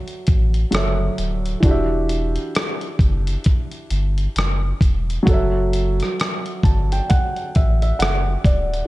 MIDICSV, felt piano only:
0, 0, Header, 1, 2, 480
1, 0, Start_track
1, 0, Tempo, 909091
1, 861, Time_signature, 4, 2, 24, 8
1, 4683, End_track
2, 0, Start_track
2, 0, Title_t, "Felt piano"
2, 0, Program_c, 0, 0
2, 0, Control_c, 0, 64, 127
2, 0, Note_on_c, 0, 54, 72
2, 0, Note_on_c, 0, 66, 65
2, 0, Note_on_c, 0, 69, 61
2, 0, Note_on_c, 0, 73, 73
2, 0, Note_on_c, 0, 76, 79
2, 352, Note_off_c, 0, 54, 0
2, 359, Note_off_c, 0, 66, 0
2, 367, Note_off_c, 0, 69, 0
2, 372, Note_off_c, 0, 73, 0
2, 375, Note_on_c, 0, 54, 53
2, 382, Note_on_c, 0, 66, 53
2, 389, Note_on_c, 0, 69, 57
2, 394, Note_on_c, 0, 73, 56
2, 397, Note_off_c, 0, 76, 0
2, 405, Note_on_c, 0, 76, 66
2, 847, Note_on_c, 0, 52, 72
2, 858, Note_off_c, 0, 54, 0
2, 860, Note_on_c, 0, 62, 67
2, 862, Note_off_c, 0, 66, 0
2, 865, Note_off_c, 0, 69, 0
2, 868, Note_off_c, 0, 73, 0
2, 869, Control_c, 0, 64, 0
2, 873, Note_off_c, 0, 76, 0
2, 873, Note_on_c, 0, 66, 68
2, 890, Note_on_c, 0, 67, 68
2, 903, Note_on_c, 0, 76, 83
2, 955, Control_c, 0, 64, 127
2, 2753, Note_off_c, 0, 52, 0
2, 2759, Note_on_c, 0, 54, 72
2, 2760, Note_off_c, 0, 62, 0
2, 2765, Note_off_c, 0, 66, 0
2, 2773, Note_on_c, 0, 66, 71
2, 2774, Note_off_c, 0, 67, 0
2, 2781, Note_off_c, 0, 76, 0
2, 2786, Note_on_c, 0, 69, 74
2, 2788, Control_c, 0, 64, 0
2, 2801, Note_on_c, 0, 73, 62
2, 2817, Note_on_c, 0, 76, 80
2, 2890, Control_c, 0, 64, 127
2, 3508, Note_on_c, 0, 81, 56
2, 3636, Note_off_c, 0, 81, 0
2, 3656, Note_on_c, 0, 79, 72
2, 3742, Note_off_c, 0, 79, 0
2, 3747, Note_on_c, 0, 78, 74
2, 3967, Note_off_c, 0, 78, 0
2, 3983, Note_off_c, 0, 76, 0
2, 3991, Note_on_c, 0, 76, 59
2, 4118, Note_off_c, 0, 76, 0
2, 4131, Note_on_c, 0, 76, 68
2, 4219, Note_off_c, 0, 76, 0
2, 4220, Note_on_c, 0, 78, 75
2, 4444, Note_off_c, 0, 78, 0
2, 4464, Note_on_c, 0, 74, 77
2, 4669, Note_off_c, 0, 54, 0
2, 4676, Note_off_c, 0, 66, 0
2, 4683, Note_off_c, 0, 69, 0
2, 4683, Note_off_c, 0, 73, 0
2, 4683, Note_off_c, 0, 74, 0
2, 4683, End_track
0, 0, End_of_file